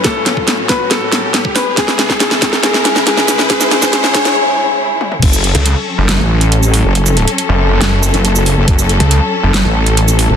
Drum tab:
CC |----------------|----------------|----------------|x---------------|
HH |x-x-x-x-x-x-x-o-|x-x-x-x-x-x-x-o-|x-x-x-xx--------|x-xxx---x--xx-o-|
SH |----------------|--------------x-|-x-x------------|-x-----------x--|
SD |o-o-o-o-o-o-o-o-|oooooooooooooooo|oooooooo--------|--------o-------|
T1 |----------------|----------------|--------------o-|----------------|
T2 |----------------|----------------|---------------o|----------------|
BD |o--o--o------o--|o--o--o---------|o--o--o---------|o---------------|

CC |----------------|----------------|
HH |x-xxx---x--xx-o-|x-xxx---x--xx-o-|
SH |-x--------x--x--|-x-----------x--|
SD |--------o-------|--------o-------|
T1 |----------------|----------------|
T2 |----------------|----------------|
BD |----------------|o---------------|